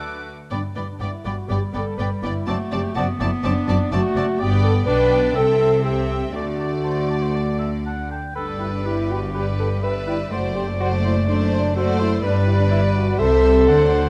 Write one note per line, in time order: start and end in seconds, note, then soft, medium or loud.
0.00 0.31 D2 medium
0.00 0.31 D3 medium
0.00 0.25 F#3 medium
0.00 0.31 A3 medium
0.00 0.25 D4 medium
0.00 0.31 F#4 medium
0.00 0.26 A4 medium
0.00 0.22 B4 medium
0.00 0.26 D5 medium
0.00 0.25 D6 medium
0.00 0.26 F#6 medium
0.51 0.59 G1 medium
0.51 0.59 G2 medium
0.51 0.59 B3 medium
0.51 0.62 D4 medium
0.51 0.62 D5 medium
0.51 0.60 D5 medium
0.51 0.59 G5 medium
0.51 0.57 B5 medium
0.75 0.84 G1 medium
0.75 0.84 G2 medium
0.75 0.84 B3 medium
0.75 0.82 E4 medium
0.75 0.87 D5 soft
0.75 0.85 D5 medium
0.75 0.83 G5 medium
0.75 0.82 B5 medium
0.91 1.02 D4 medium
1.00 1.09 G1 medium
1.00 1.09 G2 medium
1.00 1.08 B3 medium
1.00 1.26 E4 medium
1.00 1.12 D5 medium
1.00 1.10 D5 medium
1.00 1.08 G5 medium
1.00 1.07 B5 medium
1.25 1.33 G1 medium
1.25 1.34 G2 medium
1.25 1.33 B3 medium
1.25 1.50 F#4 medium
1.25 1.33 D5 medium
1.25 1.36 D5 medium
1.25 1.33 G5 medium
1.25 1.32 B5 medium
1.49 1.57 G1 medium
1.49 1.58 G2 medium
1.49 2.44 G3 medium
1.49 1.57 B3 medium
1.49 1.61 G4 loud
1.49 1.60 D5 medium
1.49 1.59 D5 medium
1.49 1.58 G5 medium
1.49 1.57 B5 medium
1.74 1.82 G1 medium
1.74 1.82 G2 medium
1.74 1.82 B3 medium
1.74 1.98 A4 loud
1.74 1.82 D5 medium
1.74 1.86 D5 medium
1.74 1.82 G5 medium
1.74 1.81 B5 medium
1.98 2.06 G1 medium
1.98 2.07 G2 medium
1.98 2.06 B3 medium
1.98 2.10 B4 loud
1.98 2.10 D5 medium
1.98 2.07 D5 medium
1.98 2.07 G5 medium
1.98 2.05 B5 medium
2.23 2.31 G1 medium
2.23 2.32 G2 medium
2.23 2.31 B3 medium
2.23 2.48 E4 medium
2.23 2.34 D5 medium
2.23 2.32 D5 medium
2.23 2.31 G5 medium
2.23 2.30 B5 medium
2.47 2.55 F#1 medium
2.47 2.56 F#2 medium
2.47 2.96 A3 medium
2.47 2.55 C4 medium
2.47 2.72 F#4 medium
2.47 2.59 D5 medium
2.47 2.57 D5 medium
2.47 2.56 A5 medium
2.47 2.54 A5 medium
2.71 2.80 F#1 medium
2.71 2.81 F#2 medium
2.71 2.79 C4 medium
2.71 2.97 G4 loud
2.71 2.83 D5 medium
2.71 2.81 D5 medium
2.71 2.80 A5 medium
2.71 2.79 A5 medium
2.95 3.04 F#1 medium
2.95 3.05 F#2 medium
2.95 3.90 B3 loud
2.95 3.04 C4 medium
2.95 3.07 F#4 loud
2.95 3.07 D5 medium
2.95 3.06 D5 medium
2.95 3.04 A5 medium
2.95 3.02 A5 medium
3.20 3.28 F#1 medium
3.20 3.29 F#2 medium
3.20 3.28 C4 medium
3.20 3.32 E4 medium
3.20 3.31 D5 medium
3.20 3.29 D5 medium
3.20 3.28 A5 medium
3.20 3.27 A5 medium
3.43 3.52 F#1 loud
3.43 3.53 F#2 medium
3.43 3.52 C4 medium
3.43 3.91 D4 loud
3.43 3.54 D5 medium
3.43 3.52 D5 medium
3.43 3.52 A5 medium
3.67 3.76 F#1 medium
3.67 3.77 F#2 medium
3.67 3.76 C4 medium
3.67 3.78 D5 medium
3.67 3.77 D5 medium
3.67 3.76 A5 medium
3.92 4.00 F#1 medium
3.92 4.00 F#2 medium
3.92 4.43 A3 loud
3.92 4.00 C4 medium
3.92 4.40 F#4 loud
3.92 4.02 D5 medium
3.92 4.00 D5 medium
3.92 4.00 A5 medium
4.16 4.24 F#1 medium
4.16 4.24 F#2 medium
4.16 4.24 C4 medium
4.16 4.24 D5 medium
4.16 4.27 D5 medium
4.16 4.24 A5 medium
4.16 4.23 A5 medium
4.39 4.83 G1 medium
4.39 4.84 G2 medium
4.39 4.83 B3 medium
4.39 4.87 B3 medium
4.39 4.63 G4 loud
4.39 4.50 D5 medium
4.39 4.83 D5 medium
4.39 4.84 G5 medium
4.39 4.47 G5 medium
4.62 4.74 A4 loud
4.62 4.73 D5 medium
4.62 4.71 G5 medium
4.86 5.35 B1 medium
4.86 5.35 B2 medium
4.86 5.34 B3 medium
4.86 5.37 D4 loud
4.86 5.34 B4 loud
4.86 4.98 D5 medium
4.86 5.34 D5 medium
4.86 5.34 G5 medium
4.86 4.95 G5 medium
5.10 5.21 D5 medium
5.10 5.18 G5 medium
5.35 6.32 C2 medium
5.35 6.33 C3 medium
5.35 5.83 C4 medium
5.35 6.36 C4 loud
5.35 5.84 A4 loud
5.35 5.46 E5 medium
5.35 5.85 E5 medium
5.35 5.83 G5 medium
5.35 5.42 G5 medium
5.59 5.71 E5 medium
5.59 5.65 G5 medium
5.83 6.33 C4 medium
5.83 6.34 G4 loud
5.83 5.96 E5 medium
5.83 6.34 E5 medium
5.83 5.90 G5 medium
5.83 6.34 G5 medium
6.09 6.22 E5 medium
6.09 6.15 G5 medium
6.34 8.11 D2 medium
6.34 8.11 D3 medium
6.34 8.14 A3 medium
6.34 8.10 A3 medium
6.34 8.06 F#4 medium
6.34 8.15 D5 medium
6.34 6.46 D5 medium
6.34 6.40 A5 medium
6.59 6.71 D5 soft
6.59 6.65 A5 soft
6.84 7.11 C5 medium
6.84 6.90 A5 medium
7.09 7.24 D5 medium
7.09 7.15 A5 medium
7.23 7.37 C5 medium
7.34 7.58 D5 medium
7.34 7.40 A5 medium
7.59 7.71 E5 medium
7.59 7.65 A5 soft
7.85 8.10 F#5 medium
7.85 7.91 A5 soft
8.10 8.35 G5 medium
8.10 8.16 A5 soft
8.35 10.27 G1 medium
8.35 10.27 G2 medium
8.35 9.30 G3 medium
8.35 8.58 D4 medium
8.35 8.88 A4 medium
8.35 9.30 B4 medium
8.35 8.46 B4 medium
8.35 9.30 D5 medium
8.35 8.41 G5 medium
8.58 8.65 E4 medium
8.58 8.71 B4 medium
8.58 8.64 G5 medium
8.73 8.84 D4 medium
8.84 9.09 E4 loud
8.84 9.85 G4 medium
8.84 8.95 B4 medium
8.84 8.91 G5 medium
9.09 9.35 F#4 medium
9.09 9.20 B4 medium
9.09 9.15 G5 medium
9.33 9.82 G3 medium
9.33 9.46 G4 loud
9.33 9.81 B4 medium
9.33 9.45 B4 medium
9.33 9.82 D5 medium
9.33 9.40 G5 medium
9.59 9.71 A4 loud
9.59 9.70 B4 medium
9.59 9.66 G5 medium
9.83 10.30 G3 medium
9.83 10.31 B4 medium
9.83 9.94 B4 medium
9.83 9.94 B4 loud
9.83 10.30 D5 medium
9.83 10.33 E5 medium
9.83 9.89 G5 medium
10.07 10.18 E4 medium
10.07 10.18 B4 medium
10.07 10.13 G5 medium
10.31 12.23 F#1 medium
10.31 12.23 F#2 medium
10.31 10.78 A3 medium
10.31 10.55 F#4 medium
10.31 10.78 C5 medium
10.31 10.43 C5 medium
10.31 11.76 D5 medium
10.31 10.79 D5 medium
10.31 10.38 D5 medium
10.55 10.66 G4 loud
10.55 10.67 C5 medium
10.55 10.61 D5 medium
10.80 11.27 A3 medium
10.80 10.91 F#4 loud
10.80 11.27 C5 medium
10.80 10.92 C5 medium
10.80 10.86 D5 medium
10.80 11.27 D5 medium
11.04 11.16 E4 medium
11.04 11.15 C5 medium
11.04 11.10 D5 medium
11.28 11.75 A3 medium
11.28 11.75 D4 loud
11.28 11.75 C5 medium
11.28 11.40 C5 medium
11.28 11.34 D5 medium
11.28 11.75 D5 medium
11.52 11.64 C5 medium
11.52 11.58 D5 medium
11.76 12.22 A3 medium
11.76 11.99 F#4 loud
11.76 12.25 A4 medium
11.76 12.22 C5 medium
11.76 11.87 C5 medium
11.76 12.22 D5 medium
11.76 11.82 D5 medium
12.00 12.24 E4 loud
12.00 12.11 C5 medium
12.00 12.06 D5 medium
12.23 13.15 G1 medium
12.23 13.15 G2 loud
12.23 13.15 G3 medium
12.23 12.47 D4 loud
12.23 13.15 B4 medium
12.23 12.72 B4 medium
12.23 13.15 B4 medium
12.23 13.14 D5 medium
12.23 13.15 D5 medium
12.47 12.53 E4 loud
12.60 12.65 D4 loud
12.70 12.82 E4 loud
12.70 13.18 D5 loud
12.96 13.19 F#4 loud
13.19 13.68 C2 medium
13.19 13.68 C3 medium
13.19 13.67 G3 medium
13.19 14.09 A4 loud
13.19 13.67 C5 medium
13.19 13.68 C5 medium
13.19 13.67 E5 medium
13.19 13.68 E5 medium
13.19 13.67 E5 medium
13.67 14.09 D2 medium
13.67 14.09 D3 medium
13.67 14.09 F#3 medium
13.67 14.09 C5 medium
13.67 14.09 D5 medium
13.67 14.09 F#5 medium
13.67 14.09 F#5 loud